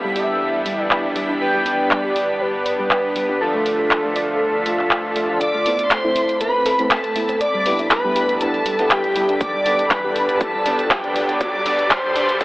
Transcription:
Already playing: detuned saw bass G1, ambient pad E3 G3 D4, supersaw synth G3 B3 D4 E4 G4, analog synth lead F5, synth texture B6
0.04 synth pluck G3
0.16 synth pluck G4, analog synth lead E5, open hi-hat
0.66 synth pluck G3, open hi-hat
0.83 analog synth lead D5
0.91 synth pluck B4, clap
1.16 synth pluck G3, open hi-hat
1.29 synth pluck D4
1.41 detuned saw bass G1, supersaw synth G3 B3 D4 G4 B4, ambient pad B3, analog synth lead G5
1.54 synth pluck G3
1.66 synth pluck D4, open hi-hat
1.91 synth pluck G3, analog synth lead D5, clap
2.04 synth pluck G4
2.16 open hi-hat
2.41 synth pluck G3, analog synth lead B4
2.66 synth pluck B4, open hi-hat
2.79 synth pluck G3
2.91 synth pluck D5, clap
3.16 synth pluck G3, open hi-hat
3.29 synth pluck D4
3.41 detuned saw bass D2, ambient pad D3 F4 A4, supersaw synth F3 A3 D4 F4 A4, analog synth lead A4, synth pluck A5
3.54 synth pluck A3
3.66 open hi-hat
3.79 synth pluck A4
3.91 clap
4.04 synth pluck A3
4.16 synth pluck D5, open hi-hat
4.66 synth pluck A3, open hi-hat
4.79 clap
4.91 synth pluck F5, clap
5.16 synth pluck A3, open hi-hat
5.29 synth pluck F4
5.41 ambient pad A2 A3 C4 A4, analog synth lead D5, violin section D6, synth texture B6, closed hi-hat, riser, shaker
5.54 synth pluck A3
5.66 supersaw synth A3 B3 C4 E4 A4, synth pluck C4, open hi-hat, shaker
5.79 closed hi-hat
5.91 synth pluck A3, analog synth lead C5, violin section C6, snare, clap, closed hi-hat, shaker
6.04 supersaw synth A3 C4 E4 A4, synth pluck E4
6.16 open hi-hat, shaker
6.29 closed hi-hat
6.41 supersaw synth A3 B3 C4 E4 A4, synth pluck A3, analog synth lead B4, violin section B5, closed hi-hat, shaker
6.66 synth pluck A4, snare, open hi-hat, shaker
6.79 supersaw synth A3 B3 C4 E4 A4, synth pluck A3, closed hi-hat
6.91 analog synth lead A4, synth pluck B4, violin section A5, snare, clap, closed hi-hat, shaker
7.04 closed hi-hat
7.16 synth pluck A3, supersaw synth A3 B3 C4 E4 A4, open hi-hat, shaker
7.29 synth pluck C4, closed hi-hat
7.41 ambient pad G2 G3 D4, synth pluck D5, analog synth lead D5, violin section D6, closed hi-hat, shaker
7.54 synth pluck G3
7.66 supersaw synth B3 D4 E4 G4 B4, open hi-hat
7.79 synth pluck E4, closed hi-hat
7.91 analog synth lead B4, violin section B5, snare, clap, closed hi-hat, shaker
8.04 synth pluck G3, supersaw synth B3 D4 E4 G4 B4
8.16 synth pluck G4, open hi-hat, shaker
8.29 closed hi-hat
8.41 supersaw synth B3 D4 E4 G4 B4, analog synth lead A4, violin section A5, closed hi-hat, shaker
8.54 closed hi-hat
8.66 synth pluck G3, open hi-hat, shaker
8.79 supersaw synth B3 D4 E4 G4 B4, snare, closed hi-hat
8.91 analog synth lead G4, synth pluck B4, violin section G5, clap, closed hi-hat, shaker
9.04 closed hi-hat
9.16 synth pluck G3, supersaw synth B3 D4 E4 G4 B4, open hi-hat, shaker
9.29 synth pluck D4, closed hi-hat
9.41 analog synth lead D5, violin section D6, kick, closed hi-hat, shaker
9.54 synth pluck G3
9.66 supersaw synth B3 D4 G4 B4 D5, synth pluck D4, open hi-hat, shaker
9.79 closed hi-hat
9.91 synth pluck G3, analog synth lead B4, violin section B5, kick, snare, clap, closed hi-hat, shaker
10.04 supersaw synth B3 D4 G4 B4 D5, synth pluck G4
10.16 open hi-hat, shaker
10.29 closed hi-hat
10.41 analog synth lead A4, violin section A5, kick, closed hi-hat, shaker
10.54 synth pluck G3
10.66 supersaw synth B3 D4 G4 B4 D5, synth pluck D4, snare, open hi-hat, shaker
10.79 closed hi-hat
10.91 synth pluck G3, analog synth lead G4, violin section G5, kick, snare, clap, closed hi-hat, shaker
11.04 supersaw synth B3 D4 G4 B4 D5, synth pluck G4, closed hi-hat
11.16 open hi-hat, shaker
11.29 closed hi-hat
11.41 ambient pad D2 D3 F4 A4, analog synth lead D5, violin section D6, kick, closed hi-hat, shaker
11.54 synth pluck G3
11.66 supersaw synth B3 D4 G4 B4 D5, synth pluck D4, open hi-hat
11.79 closed hi-hat
11.91 analog synth lead C5, violin section C6, kick, snare, clap, closed hi-hat, shaker
12.04 synth pluck G3
12.16 supersaw synth B3 D4 G4 B4 D5, synth pluck D4, open hi-hat, shaker
12.29 closed hi-hat
12.41 supersaw synth B3 D4 G4 B4 D5, analog synth lead B4, violin section B5, kick, closed hi-hat, shaker

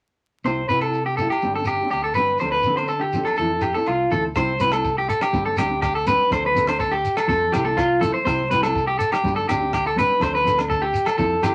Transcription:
0.44 fingered electric bass C2, clean electric guitar C4 E4 G4 C5, low agogo, shekere
0.69 fingered electric bass C3, clean electric guitar C4 E4 G4 B4, shekere
0.81 clean electric guitar G4 A4, low agogo
0.85 clean electric guitar E4
0.93 shekere
1.06 clean electric guitar G4
1.17 clean electric guitar A4, muted clean electric guitar stroke, shekere
1.21 clean electric guitar E4 G4
1.29 clean electric guitar G4, low agogo, shekere
1.41 fingered electric bass G1, clean electric guitar G3 C4 D4 G4, shekere
1.55 clean electric guitar D4 G4 A4
1.60 clean electric guitar C4
1.65 clean electric guitar G4, low agogo, shekere
1.79 clean electric guitar G4, shekere
1.83 clean electric guitar C4 D4
1.90 fingered electric bass D2, clean electric guitar G4, low agogo, shekere
2.04 clean electric guitar A4
2.14 clean electric guitar G3 C4 B4, shekere
2.18 fingered electric bass G1, clean electric guitar D4 G4
2.27 shekere
2.38 fingered electric bass D2, clean electric guitar F3 C4 C5, low agogo, shekere
2.43 clean electric guitar D4 A4
2.52 clean electric guitar B4
2.63 fingered electric bass D3, clean electric guitar F3 C4, shekere
2.67 clean electric guitar D4 A4
2.77 clean electric guitar D4 A4 C5, low agogo
2.81 clean electric guitar C4
2.87 clean electric guitar A4, shekere
3.01 clean electric guitar G4
3.13 clean electric guitar F3 C4 D4, shekere
3.18 clean electric guitar A4
3.25 clean electric guitar A4, low agogo, shekere
3.36 fingered electric bass F2, clean electric guitar E3 E4 A4, muted clean electric guitar stroke, shekere
3.52 clean electric guitar E4 A4
3.61 clean electric guitar G4, low agogo, shekere
3.73 clean electric guitar E4 A4, shekere
3.78 clean electric guitar C4
3.86 fingered electric bass C2, clean electric guitar F4, low agogo, shekere
4.11 fingered electric bass D2, clean electric guitar E3 C4 E4 A4, shekere
4.23 shekere
4.35 fingered electric bass C2, clean electric guitar G3 C4 E4 G4 C5, kick, cross-stick, low agogo, shekere
4.59 clean electric guitar G3 C4 E4 B4, closed hi-hat, shekere
4.63 clean electric guitar G4
4.72 clean electric guitar C4 E4 A4, cross-stick, low agogo
4.84 kick, shekere
4.98 clean electric guitar G4
5.09 clean electric guitar A4, closed hi-hat, shekere
5.21 clean electric guitar G4, cross-stick, low agogo
5.33 fingered electric bass G1, clean electric guitar G3 C4 D4 G4, kick, shekere
5.46 clean electric guitar A4
5.56 fingered electric bass D2, clean electric guitar G3 C4 D4 G4, cross-stick, closed hi-hat, low agogo, shekere
5.69 clean electric guitar C4 D4 G4
5.82 clean electric guitar G4, kick, cross-stick, low agogo, shekere
5.95 clean electric guitar A4
6.07 clean electric guitar G3 C4 D4 G4 B4, closed hi-hat, shekere
6.30 fingered electric bass D2, clean electric guitar F3 C4 D4 A4 C5, kick, cross-stick, low agogo, shekere
6.46 clean electric guitar B4
6.54 clean electric guitar F3 C4 D4 A4, closed hi-hat, shekere
6.67 clean electric guitar C4 D4 A4 C5, cross-stick, low agogo
6.79 clean electric guitar A4, kick, shekere
6.91 clean electric guitar G4
7.05 closed hi-hat, shekere
7.17 clean electric guitar A4, cross-stick, low agogo
7.28 fingered electric bass F2, clean electric guitar F3 C4 A4, muted clean electric guitar stroke, kick, shekere
7.52 fingered electric bass C2, clean electric guitar F3 C4 E4 G4 A4, cross-stick, closed hi-hat, low agogo, shekere
7.65 clean electric guitar C4 E4 A4
7.77 clean electric guitar F4, kick, cross-stick, low agogo, shekere
8.01 clean electric guitar F3 C4 E4 A4, closed hi-hat, shekere
8.14 clean electric guitar C5
8.24 fingered electric bass C2, clean electric guitar G3 C4 E4 G4 C5, kick, cross-stick, low agogo
8.29 shekere
8.50 clean electric guitar G3 C4 E4 G4 B4, closed hi-hat, shekere
8.62 clean electric guitar C4 E4 G4 A4, cross-stick, low agogo
8.75 kick, shekere
8.87 clean electric guitar G4
8.99 clean electric guitar A4, closed hi-hat, shekere
9.12 clean electric guitar G4, cross-stick, low agogo
9.24 fingered electric bass G1, clean electric guitar G3 D4 G4, muted clean electric guitar stroke, kick, shekere
9.36 clean electric guitar A4
9.49 fingered electric bass D2, clean electric guitar C4 D4 G4, muted clean electric guitar stroke, cross-stick, closed hi-hat, low agogo, shekere
9.60 clean electric guitar C4 D4 G4
9.73 clean electric guitar G4, kick, cross-stick, low agogo, shekere
9.87 clean electric guitar A4
9.96 clean electric guitar G3 C4 D4 G4 B4, closed hi-hat, shekere
10.19 fingered electric bass D2, clean electric guitar F3 C4 D4 A4 C5, kick, cross-stick, low agogo
10.23 shekere
10.35 clean electric guitar B4
10.44 clean electric guitar F3 C4 D4 A4, closed hi-hat, shekere
10.57 clean electric guitar C4 D4 A4, cross-stick, low agogo
10.70 clean electric guitar A4, kick, shekere
10.82 clean electric guitar G4
10.94 closed hi-hat, shekere
11.06 clean electric guitar A4, cross-stick, low agogo
11.18 fingered electric bass F2, clean electric guitar F3 C4 E4 A4, kick, shekere
11.42 fingered electric bass G1, clean electric guitar F3 C4 E4 G4 A4, cross-stick, closed hi-hat, low agogo, shekere

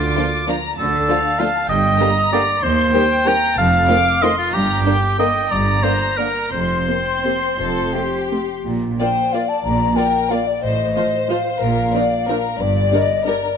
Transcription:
Already playing: double bass section D2, cello section D3, oboe F4, violin section D6
0.15 viola section F3 A#3, violin section D4 F4
0.47 viola section F3 A#3, violin section D4 F4 A#5
0.78 double bass section D2, cello section D3, oboe A4, violin section A5
1.09 viola section F3 A3, violin section D4 F4 F5
1.39 viola section F3 A3, violin section D4 F4 A5, oboe F5
1.69 double bass section G1, cello section G2, oboe D#5, violin section G5
1.99 viola section D3 G3, violin section A#3 G4 A#5
2.32 viola section D3 G3, violin section A#3 G4, oboe D5
2.63 cello section D#2, double bass section D#2, oboe C5, violin section C6
2.93 viola section D#3 G3, violin section C4 G4 G5
3.25 viola section D#3 G3, violin section C4 G4 A#5, oboe G5
3.58 double bass section F1, cello section F2, oboe F5, violin section A5
3.89 viola section D#3 A3, violin section C4 F4 D6
4.22 viola section D#3 A3, violin section C4 F4 C6, oboe D#5
4.38 oboe F4
4.54 double bass section G1, cello section G2, oboe G4, violin section A#5
4.85 viola section D3 A#3, violin section A#3 D4 G5
5.18 viola section D3 A#3, violin section A#3 D4, oboe D#5
5.51 double bass section G1, cello section G2, oboe D5, violin section A#5
5.83 viola section D3 A#3, violin section A#3 D4, oboe C5
6.17 viola section D3 A#3, violin section A#3 D4, oboe A#4
6.52 double bass section F1, cello section F2, oboe C5, violin section C6
6.87 viola section C3 A#3, violin section C4
7.24 viola section C3 A#3
7.59 double bass section F1, cello section F2, violin section A4
7.94 viola section C3 A3, violin section G4
8.32 viola section C3 A3
8.66 double bass section A#1, cello section A#2
8.99 viola section A#3 F4, violin section C5 D5, flute G5
9.33 viola section A#3 F4, violin section D5, flute F5
9.49 flute A5
9.64 double bass section A#1, cello section A#2, flute A#5
9.96 viola section A#3 F4, violin section A#4 D5, flute G5
10.30 viola section A#3 F4, violin section D5, flute F5
10.47 flute D5
10.62 double bass section A1, cello section A2, violin section C5, flute D#5
10.96 viola section F3 F4, violin section C5
11.29 viola section F3 F4, violin section C5, flute F5
11.62 double bass section A#1, cello section A#2, violin section A#4
11.94 viola section F3 D4, violin section A#4 D5
12.28 viola section F3 D4, violin section A#4
12.59 double bass section G1, cello section G2, violin section D5
12.92 viola section G3 D4, violin section A#4, flute D#5
13.26 viola section G3 D4, violin section A#4, flute D5

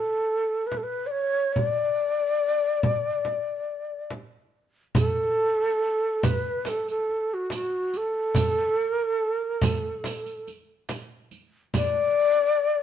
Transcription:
Already playing: ney A4
0.67 ney B4
0.72 frame drum
0.77 ney A4
0.83 ney B4
1.07 ney D5
1.11 ney C#5
1.53 ney C#5, frame drum
1.64 ney D5
2.83 frame drum
3.25 frame drum
4.10 frame drum
4.95 ney A4, riq, frame drum, tombak dum
5.18 tombak ka
6.23 ney B4, riq, frame drum, tombak dum
6.46 tombak ka
6.65 ney A4, riq, tombak tek, frame drum
6.88 ney A4, riq
7.09 tombak ka
7.34 ney F#4
7.50 ney F#4, riq, tombak tek, frame drum
7.94 ney A4, riq, tombak ka
8.35 riq, frame drum, tombak dum
8.57 tombak ka
8.86 ney A#4
9.11 ney A4
9.37 ney A#4
9.61 ney A4, riq, frame drum, tombak dum
9.83 tombak ka
10.04 riq, tombak tek, frame drum
10.26 riq
10.47 riq, tombak ka
10.89 riq, tombak tek, frame drum
11.31 riq, tombak ka
11.74 ney D5, riq, frame drum, tombak dum
11.95 tombak ka

